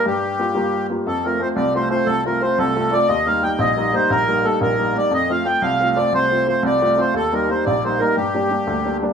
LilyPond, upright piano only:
\new Staff \with { instrumentName = "Upright piano" } { \time 6/8 \key f \mixolydian \tempo 4. = 118 g,4 <g bes f'>8 <g bes f'>4 <g bes f'>8 | f,8 <a c' f'>8 <a c' f'>8 c,8 <a c' f'>8 <a c' f'>8 | c,8 <a c' f'>8 <a c' f'>8 c,8 <a c' f'>8 <a c' f'>8 | ees,8 <g bes ees'>8 <g bes ees'>8 bes,,8 <g bes ees'>8 <g bes ees'>8 |
bes,,8 <g bes ees'>8 <g bes ees'>8 bes,,8 <g bes ees'>8 <g bes ees'>8 | f,8 <a c' f'>8 <a c' f'>8 c,8 <a c' f'>8 <a c' f'>8 | c,8 <a c' f'>8 <a c' f'>8 c,8 <a c' f'>8 <a c' f'>8 | ees,8 <g bes ees'>8 <g bes ees'>8 bes,,8 <g bes ees'>8 <g bes ees'>8 |
g,8 <g bes d'>8 <g bes d'>8 d,8 <g bes d'>8 <g bes d'>8 | }